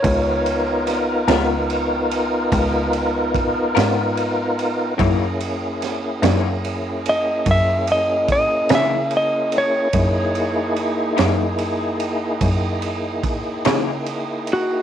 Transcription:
<<
  \new Staff \with { instrumentName = "Electric slide guitar" } { \time 12/8 \key ges \major \tempo 4. = 49 des''2~ des''8 r2. r8 | r2 r8 ees''8 fes''8 ees''8 ees''8 fes''8 ees''8 des''8~ | des''2~ des''8 r2. ges'8 | }
  \new Staff \with { instrumentName = "Tonewheel organ" } { \time 12/8 \key ges \major <ces' ees' f' bes'>1. | <bes des' fes' aes'>1. | <bes ees' fes' aes'>1. | }
  \new Staff \with { instrumentName = "Clean electric guitar" } { \time 12/8 \key ges \major r4. <des ces' f' bes'>8 r2 r8 <des ces' f' bes'>8 r4 | <ges, fes bes ees'>8 r4 <ges, fes bes ees'>8 r2 r8 <ges, fes bes ees'>8 r4 | r4. <ges, fes bes ees'>8 r2 r8 <ges, fes bes ees'>8 r4 | }
  \new Staff \with { instrumentName = "Cello" } { \clef bass \time 12/8 \key ges \major des,4. des,4. des,4. aes,4. | ges,4. ges,4. ges,4. des4. | ges,4. ges,4. ges,4. des4. | }
  \new DrumStaff \with { instrumentName = "Drums" } \drummode { \time 12/8 <bd cymr>8 cymr8 <cymr sn>8 <cymr sn>8 cymr8 cymr8 <bd cymr>8 cymr8 <bd cymr>8 <cymr sn>8 cymr8 cymr8 | <bd cymr>8 cymr8 <cymr sn>8 <cymr sn>8 cymr8 cymr8 <bd cymr>8 cymr8 <bd cymr>8 <cymr sn>8 cymr8 cymr8 | <bd cymr>8 cymr8 cymr8 <cymr sn>8 cymr8 cymr8 <bd cymr>8 cymr8 <bd cymr>8 <cymr sn>8 cymr8 cymr8 | }
>>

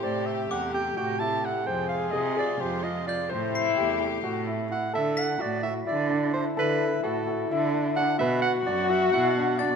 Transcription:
<<
  \new Staff \with { instrumentName = "Glockenspiel" } { \time 7/8 \key d \mixolydian \tempo 4 = 129 r4 d'''4.~ d'''16 r8. | r2. g'''8~ | g'''8 c''''4.~ c''''16 r4 r16 | r8 b'''4.~ b'''16 r4 r16 |
r2. r8 | r2. a'''8 | }
  \new Staff \with { instrumentName = "Soprano saxophone" } { \time 7/8 \key d \mixolydian d''8 e''8 fis''8 g''8 g''8 a''8 fis''8 | g''8 f''8 dis''8 d''8 c''8 dis''8 d''8 | c''4. r4. fis''8 | e''8 fis''8 d''8 e''8 d''4 c''8 |
b'4 a'4. r8 fis''8 | e''8 fis''8 d''8 e''8 fis''4 d''8 | }
  \new Staff \with { instrumentName = "French horn" } { \time 7/8 \key d \mixolydian g'2.~ g'8 | aes'2. r8 | e'2. r8 | e'2.~ e'8~ |
e'2.~ e'8 | fis'2.~ fis'8 | }
  \new Staff \with { instrumentName = "Grand piano" } { \time 7/8 \key d \mixolydian c''4 g'8 g'8 fis'8 e'8 e'8 | c''4 aes'8 aes'8 g'8 f'8 f'8 | c''4 g'8 g'8 fis'8 e'8 e'8 | a'4 fis'8 fis'8 e'8 d'8 d'8 |
a'4 fis'8 fis'8 e'8 d'8 d'8 | b'4 fis'8 fis'8 e'8 d'8 d'8 | }
  \new Staff \with { instrumentName = "String section" } { \time 7/8 \key d \mixolydian << { <a g'>2.~ <a g'>8 | <aes f'>2.~ <aes f'>8 | <a g'>2.~ <a g'>8 | r2. r8 |
r2. r8 | r2. r8 | } \\ { c2.~ c8~ | c2.~ c8~ | c2.~ c8 | r2. r8 |
r2. r8 | r2. r8 | } >> }
  \new Staff \with { instrumentName = "Cello" } { \clef bass \time 7/8 \key d \mixolydian a,4 e,4 a,4. | f,4 c4 f,4. | a,4 e,4 a,4. | d4 a,4 d4. |
d4 a,4 d4. | b,4 fis,4 b,4. | }
>>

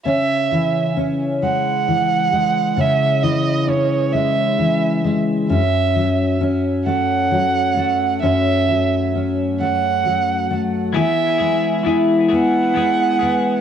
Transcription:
<<
  \new Staff \with { instrumentName = "Violin" } { \time 6/8 \key cis \minor \tempo 4. = 44 e''4 r8 fis''4. | e''8 dis''8 cis''8 e''4 r8 | e''4 r8 fis''4. | e''4 r8 fis''4 r8 |
e''4 r8 fis''4. | }
  \new Staff \with { instrumentName = "Clean electric guitar" } { \time 6/8 \key cis \minor r2. | r2. | r2. | r2. |
<e b e' gis'>8 <b e' gis'>8 <e b e' gis'>8 <e b e' gis'>8 <e b e' gis'>8 <b e' gis'>8 | }
  \new Staff \with { instrumentName = "Steel-string acoustic guitar" } { \clef bass \time 6/8 \key cis \minor <cis cis'>8 e8 cis'8 gis8 e8 gis8 | <cis cis'>8 e8 cis'8 gis8 e8 gis8 | <fis, cis'>8 fis8 cis'8 a8 fis8 a8 | <fis, cis'>8 fis8 cis'8 a8 fis8 a8 |
<e e'>8 gis8 e'8 b8 gis8 b8 | }
>>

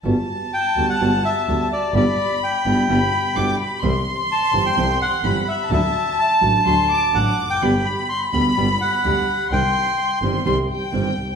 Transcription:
<<
  \new Staff \with { instrumentName = "Violin section" } { \time 4/4 \key g \major \tempo 4 = 127 a''1 | b''2 b''4 d'''8 b''8 | c'''2. b''4 | a''2 c'''8 d'''8 d'''4 |
b''1 | c'''2 c'''8 g''4. | }
  \new Staff \with { instrumentName = "Bandoneon" } { \time 4/4 \key g \major r4 g''8. fis''8. e''4 d''8 | d''4 g''2~ g''8 r8 | r4 a''8. g''8. fis''4 e''8 | e''4 a''2 fis''8. g''16~ |
g''8 b''8 c'''8 b''4 fis''4. | g''4. r2 r8 | }
  \new Staff \with { instrumentName = "Nylon-string guitar" } { \clef bass \time 4/4 \key g \major <g b fis'>8 r4 <g b fis'>8 <g b fis'>8 r8 <g b fis'>8 r8 | <b, d g b e'>8 r4 <b, d g b e'>8 <b, d g b e'>8 r8 <b, d g b e'>8 r8 | <c e g c' e'>8 r4 <c e g c' e'>8 <c e g c' e'>8 r8 <c e g c' e'>8 r8 | <d fis a e' fis'>8 r4 <d fis a e' fis'>8 <d fis a e' fis'>8 r8 <d fis a e' fis'>8 r8 |
<b, d g b g'>8 r4 <b, d g b g'>8 <b, d g b g'>8 r8 <b, d g b g'>8 r8 | <c ees g c' g'>8 r4 <c ees g c' g'>8 <c ees g c' g'>8 r8 <c ees g c' g'>8 r8 | }
  \new Staff \with { instrumentName = "Double bass" } { \clef bass \time 4/4 \key g \major g,,8 r4 d,8 g,,8 r8 d,8 r8 | g,,8 r4 g,,8 g,,8 r8 g,,8 r8 | c,8 r4 g,,8 c,8 r8 g,,8 r8 | d,8 r4 a,,8 d,8 r8 a,,8 f,,8 |
g,,8 r4 d,8 g,,8 r8 d,8 r8 | c,8 r4 g,,8 c,8 r8 g,,8 c,8 | }
>>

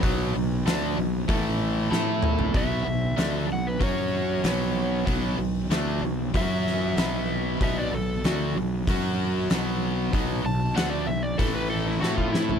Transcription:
<<
  \new Staff \with { instrumentName = "Electric slide guitar" } { \time 4/4 \key b \minor \tempo 4 = 95 r1 | e''4. fis''16 b'16 cis''2 | r2 e''2 | e''16 d''16 a'8 fis'8 r2 r8 |
r8 a''8 fis''16 d''16 e''16 d''16 a'16 b'16 a'16 e'16 fis'16 eis'16 e'8 | }
  \new Staff \with { instrumentName = "Overdriven electric guitar" } { \clef bass \time 4/4 \key b \minor <b, fis b>8 <b, fis>8 <d a d'>8 <b, fis>8 <a, e a>4 <a e' a'>4 | <b, fis b>8 <b, fis>8 <d a d'>8 <b, fis>8 <fis cis' fis'>4 <b, fis b>4 | <b, fis b>8 <b, fis>8 <d a d'>8 <b, fis>8 <fis cis' fis'>4 <b, fis b>4 | <b, fis b>8 <b, fis>8 <d a d'>8 <b, fis>8 <fis cis' fis'>4 <b, fis b>4 |
<b, fis b>8 <b, fis>8 <d a d'>8 <b, fis>8 <a, e a>4 <a e' a'>4 | }
  \new Staff \with { instrumentName = "Fingered electric bass" } { \clef bass \time 4/4 \key b \minor b,,8 b,,8 d,8 b,,8 a,,4 a,4 | b,,8 b,,8 d,8 b,,8 fis,4 b,,4 | b,,8 b,,8 d,8 b,,8 fis,4 b,,4 | b,,8 b,,8 d,8 b,,8 fis,4 b,,4 |
b,,8 b,,8 d,8 b,,8 a,,4 a,4 | }
  \new DrumStaff \with { instrumentName = "Drums" } \drummode { \time 4/4 <hho bd>4 <hho sn>4 <hho bd>4 sn8 toml16 tomfh16 | <hho bd>4 <hho sn>4 <hho bd>4 <hho sn>4 | <hho bd>4 <hho sn>4 <hho bd>8 sn8 <hho sn>4 | <hho bd>4 <hho sn>4 <hho bd>4 <hho sn>4 |
<hho bd>4 <hho sn>4 <hho bd>4 sn16 bd16 sn16 tomfh16 | }
>>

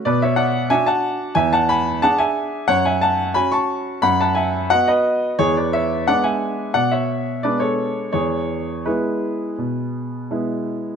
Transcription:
<<
  \new Staff \with { instrumentName = "Grand piano" } { \time 4/4 \key e \mixolydian \tempo 4 = 88 <b' d''>16 <cis'' e''>16 <d'' fis''>8 <e'' gis''>16 <fis'' a''>8. <e'' gis''>16 <fis'' a''>16 <gis'' b''>8 <fis'' a''>16 <e'' gis''>8. | <cis'' fis''>16 <e'' gis''>16 <fis'' a''>8 <gis'' b''>16 <a'' cis'''>8. <fis'' b''>16 <fis'' a''>16 <e'' gis''>8 <dis'' fis''>16 <b' dis''>8. | <gis' cis''>16 <b' d''>16 <cis'' e''>8 <d'' fis''>16 <e'' gis''>8. <d'' fis''>16 <cis'' e''>8. <b' d''>16 <a' cis''>8. | <gis' cis''>4 <gis' b'>2~ <gis' b'>8 r8 | }
  \new Staff \with { instrumentName = "Grand piano" } { \time 4/4 \key e \mixolydian b,4 <d' fis'>4 e,4 <d' gis'>4 | fis,4 <cis' fis'>4 fis,4 <b fis'>4 | e,4 <gis b d'>4 b,4 <gis b d'>4 | e,4 <gis b e'>4 b,4 <gis b e'>4 | }
>>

